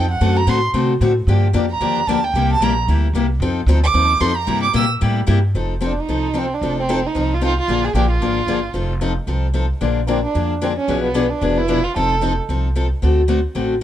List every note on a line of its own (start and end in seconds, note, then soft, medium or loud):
0.00 0.20 F2 medium
0.00 0.10 G5 loud
0.11 0.38 F#5 medium
0.21 0.46 F#2 medium
0.21 0.39 D3 medium
0.21 0.39 A3 medium
0.21 0.40 C4 medium
0.21 0.39 F#4 medium
0.21 0.40 A4 medium
0.37 0.51 A#5 loud
0.47 0.73 A2 medium
0.47 0.58 D3 medium
0.47 0.58 A3 medium
0.47 0.58 C4 medium
0.47 0.58 F#4 loud
0.47 0.58 A4 loud
0.47 0.64 C6 loud
0.74 1.00 C3 medium
0.74 0.92 D3 medium
0.74 0.92 A3 medium
0.74 0.93 C4 medium
0.74 0.93 F#4 medium
0.74 0.93 A4 medium
1.01 1.26 A2 medium
1.01 1.11 D3 medium
1.01 1.11 A3 medium
1.01 1.12 C4 medium
1.01 1.12 F#4 medium
1.01 1.12 A4 loud
1.27 1.53 G2 medium
1.27 1.46 D3 medium
1.27 1.46 F3 medium
1.27 1.46 A#3 medium
1.27 1.46 D4 medium
1.27 1.47 G4 medium
1.53 1.80 F2 loud
1.53 1.64 D3 medium
1.53 1.64 F3 medium
1.53 1.64 A#3 medium
1.53 1.65 D4 medium
1.53 1.65 G4 loud
1.71 2.09 A#5 medium
1.80 2.07 D#2 medium
1.80 1.99 D3 medium
1.80 1.99 F3 medium
1.80 1.99 A#3 medium
1.80 2.00 D4 medium
1.80 2.00 G4 medium
2.07 2.33 D2 medium
2.07 2.18 D3 medium
2.07 2.19 F3 medium
2.07 2.19 A#3 medium
2.07 2.19 D4 medium
2.07 2.19 G4 medium
2.07 2.26 A5 medium
2.24 2.50 G5 loud
2.34 2.60 C2 medium
2.34 2.53 C3 medium
2.34 2.53 G3 medium
2.34 2.53 A#3 medium
2.34 2.54 E4 medium
2.34 2.54 G4 medium
2.53 2.65 A5 loud
2.61 2.87 A#1 loud
2.61 2.72 C3 medium
2.61 2.72 G3 loud
2.61 2.72 A#3 medium
2.61 2.72 E4 loud
2.61 2.72 G4 loud
2.61 2.78 A#5 loud
2.88 3.13 D2 medium
2.88 3.06 C3 medium
2.88 3.07 G3 medium
2.88 3.07 A#3 medium
2.88 3.07 E4 medium
2.88 3.07 G4 medium
3.13 3.39 C2 medium
3.13 3.25 C3 medium
3.13 3.25 G3 medium
3.13 3.25 A#3 medium
3.13 3.25 E4 medium
3.13 3.25 G4 medium
3.40 3.66 F2 loud
3.40 3.60 F3 medium
3.40 3.60 C4 medium
3.40 3.60 D#4 medium
3.40 3.60 A4 medium
3.67 3.93 D2 loud
3.67 3.78 F3 medium
3.67 3.79 C4 loud
3.67 3.79 D#4 loud
3.67 3.79 A4 loud
3.84 4.22 D6 loud
3.94 4.20 D#2 medium
3.94 4.13 F3 medium
3.94 4.13 C4 medium
3.94 4.13 D#4 medium
3.94 4.13 A4 medium
4.20 4.47 F2 medium
4.20 4.31 F3 medium
4.20 4.31 C4 loud
4.20 4.31 D#4 loud
4.20 4.31 A4 loud
4.20 4.38 C6 loud
4.36 4.62 A#5 loud
4.47 4.74 G2 medium
4.47 4.66 C3 medium
4.47 4.66 G3 medium
4.47 4.66 A#3 medium
4.47 4.66 E4 medium
4.47 4.66 G4 medium
4.63 4.74 D6 loud
4.73 5.00 A#2 loud
4.73 4.84 C3 medium
4.73 4.84 G3 loud
4.73 4.85 A#3 loud
4.73 4.85 E4 medium
4.73 4.85 G4 loud
4.73 4.85 E6 loud
5.01 5.27 A2 medium
5.01 5.19 C3 medium
5.01 5.20 G3 medium
5.01 5.19 A#3 medium
5.01 5.20 E4 medium
5.01 5.20 G4 medium
5.27 5.54 G2 loud
5.27 5.38 C3 medium
5.27 5.38 G3 medium
5.27 5.38 A#3 medium
5.27 5.38 E4 medium
5.27 5.38 G4 loud
5.55 5.97 F1 medium
5.55 5.73 F3 medium
5.55 5.73 C4 medium
5.55 5.74 D#4 medium
5.55 5.74 A4 medium
5.81 5.91 F3 medium
5.81 5.92 C4 medium
5.81 5.92 D#4 medium
5.81 5.92 A4 medium
5.86 6.02 D4 medium
6.00 6.39 D#4 medium
6.08 6.51 C2 medium
6.08 6.27 F3 medium
6.08 6.27 C4 medium
6.08 6.27 D#4 medium
6.08 6.27 A4 medium
6.34 6.44 F3 medium
6.34 6.45 C4 medium
6.34 6.45 D#4 medium
6.34 6.45 A4 medium
6.38 6.55 C4 medium
6.54 6.79 D4 medium
6.61 7.04 F1 medium
6.61 6.80 F3 medium
6.61 6.80 C4 medium
6.61 6.81 D#4 medium
6.61 6.81 A4 medium
6.80 7.09 C4 medium
6.89 6.99 F3 medium
6.89 6.99 C4 medium
6.89 6.99 D#4 medium
6.89 6.99 A4 medium
7.07 7.36 D#4 medium
7.15 7.58 C2 medium
7.15 7.33 F3 medium
7.15 7.33 C4 medium
7.15 7.34 D#4 medium
7.15 7.34 A4 medium
7.34 7.44 F4 medium
7.41 7.52 F3 medium
7.41 7.52 C4 medium
7.41 7.52 D#4 medium
7.41 7.58 F4 loud
7.41 7.52 A4 medium
7.60 7.86 F4 medium
7.68 7.89 A#1 medium
7.68 7.87 D3 medium
7.68 7.87 F3 medium
7.68 7.87 A#3 medium
7.68 7.87 D4 medium
7.68 7.87 G#4 medium
7.85 7.95 G#4 medium
7.94 8.17 A#1 medium
7.94 8.05 D3 medium
7.94 8.05 F3 medium
7.94 8.05 A#3 medium
7.94 8.05 D4 medium
7.94 8.10 G4 medium
7.94 8.06 G#4 loud
8.11 8.86 F4 medium
8.21 8.44 G#1 medium
8.21 8.40 D3 medium
8.21 8.40 F3 medium
8.21 8.40 A#3 medium
8.21 8.40 D4 medium
8.21 8.40 G#4 medium
8.47 8.70 G1 medium
8.47 8.58 D3 medium
8.47 8.58 F3 medium
8.47 8.59 A#3 medium
8.47 8.58 D4 medium
8.47 8.59 G#4 medium
8.73 9.17 F1 medium
8.73 8.93 F3 medium
8.73 8.93 C4 medium
8.73 8.93 D#4 medium
8.73 8.93 A4 medium
9.01 9.12 F3 medium
9.01 9.12 C4 medium
9.01 9.12 D#4 medium
9.01 9.12 A4 medium
9.27 9.70 C2 medium
9.27 9.46 F3 medium
9.27 9.46 C4 medium
9.27 9.46 D#4 medium
9.27 9.46 A4 medium
9.54 9.64 F3 medium
9.54 9.65 C4 medium
9.54 9.65 D#4 medium
9.54 9.65 A4 medium
9.81 10.24 A#1 medium
9.81 9.99 D3 medium
9.81 10.00 F3 medium
9.81 10.00 A#3 medium
9.81 10.00 D4 medium
9.81 10.00 G#4 medium
10.07 10.18 D3 medium
10.07 10.18 F3 medium
10.07 10.10 A#3 medium
10.07 10.19 A#3 medium
10.07 10.24 C4 medium
10.07 10.19 D4 medium
10.07 10.19 G#4 medium
10.24 10.49 D4 medium
10.35 10.78 F2 medium
10.35 10.53 D3 medium
10.35 10.53 F3 medium
10.35 10.53 A#3 medium
10.35 10.53 D4 medium
10.35 10.54 G#4 medium
10.61 10.72 D3 medium
10.61 10.72 F3 medium
10.61 10.72 A#3 medium
10.61 10.70 C4 medium
10.61 10.72 D4 medium
10.61 10.72 G#4 medium
10.77 11.02 C#4 medium
10.88 11.31 B1 medium
10.88 11.06 B2 medium
10.88 11.07 F3 medium
10.88 11.07 B3 medium
10.88 11.07 D4 medium
10.88 11.07 G#4 medium
10.88 11.07 B4 medium
11.03 11.32 B3 medium
11.14 11.25 B2 medium
11.14 11.25 F3 medium
11.14 11.25 B3 medium
11.14 11.25 D4 medium
11.14 11.25 G#4 medium
11.14 11.25 B4 medium
11.30 11.59 D4 medium
11.41 11.84 F1 medium
11.41 11.60 B2 medium
11.41 11.60 F3 medium
11.41 11.60 B3 medium
11.41 11.60 D4 medium
11.41 11.60 G#4 medium
11.41 11.60 B4 medium
11.58 11.85 E4 loud
11.68 11.78 B2 medium
11.68 11.79 F3 medium
11.68 11.79 B3 medium
11.68 11.79 D4 medium
11.68 11.79 G#4 medium
11.68 11.79 B4 medium
11.84 11.95 F4 medium
11.96 12.38 F1 medium
11.96 12.14 F3 medium
11.96 12.14 C4 medium
11.96 12.14 D#4 medium
11.96 12.14 A4 medium
11.96 12.35 A4 medium
12.21 12.32 F3 medium
12.21 12.32 C4 medium
12.21 12.32 D#4 medium
12.21 12.33 A4 medium
12.49 12.91 C2 medium
12.49 12.67 F3 medium
12.49 12.67 C4 medium
12.49 12.67 D#4 medium
12.49 12.68 A4 medium
12.75 12.86 F3 medium
12.75 12.86 C4 medium
12.75 12.86 D#4 medium
12.75 12.86 A4 medium
13.02 13.45 D2 medium
13.02 13.20 D3 medium
13.02 13.21 A3 medium
13.02 13.21 C4 medium
13.02 13.21 F#4 medium
13.02 13.21 A4 medium
13.28 13.38 D3 medium
13.28 13.39 A3 medium
13.28 13.39 C4 medium
13.28 13.39 F#4 medium
13.28 13.39 A4 loud
13.55 13.83 A1 medium
13.55 13.73 D3 medium
13.55 13.73 A3 medium
13.55 13.74 C4 medium
13.55 13.74 F#4 medium
13.55 13.74 A4 medium